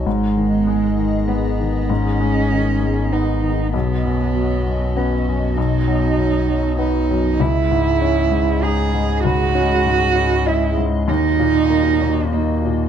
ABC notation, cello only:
X:1
M:3/4
L:1/8
Q:1/4=98
K:G#m
V:1 name="Cello"
G,4 B,2 | C4 D2 | B,4 C2 | D4 D2 |
E4 G2 | F4 E z | D4 A,2 |]